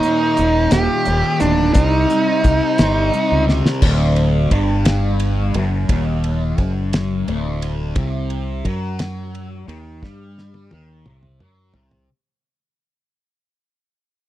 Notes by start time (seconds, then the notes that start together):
Already playing: D#2 D#4
0.02 A#2 D#3, closed hi-hat
0.37 D#1 D#2 A#2 D#3, closed hi-hat
0.71 D#1 D#3 G4, snare, closed hi-hat
0.75 A#2
1.05 D#1 D#2 A#2, closed hi-hat
1.10 D#3
1.40 D1 D#3 D4, closed hi-hat
1.45 A#2
1.74 C2 C3 G3 D#4, kick, closed hi-hat
1.79 C4
2.10 C4, closed hi-hat
2.14 G3
2.44 C2 C3 G3 C4, kick, closed hi-hat
2.78 G1 C4, snare, closed hi-hat
2.83 G3
3.13 C3 G3 C4, closed hi-hat
3.32 C#2
3.48 G3 C4, snare
3.66 snare
3.82 D1 D2, kick, crash
4.16 ride
4.51 G1 G2, kick, ride
4.85 snare, ride
5.20 ride
5.54 F#1 F#2, ride
5.89 D#1 D#2, kick, ride
6.24 ride
6.58 F#1 F#2, kick, ride
6.93 snare, ride
7.28 D1 D2, ride
7.62 ride
7.96 C2 C3, kick, ride
8.30 ride
8.65 F#2 F#3, kick, ride
8.99 snare, ride
9.35 ride
9.67 D#2 D#3, ride
10.02 G2 G3, kick, snare
10.38 snare
10.54 high tom
10.71 D#2 D#3, high tom
11.06 C2 C3, mid tom
11.23 mid tom
11.39 F#2 F#3, mid tom
11.73 C2 C3, floor tom
11.91 floor tom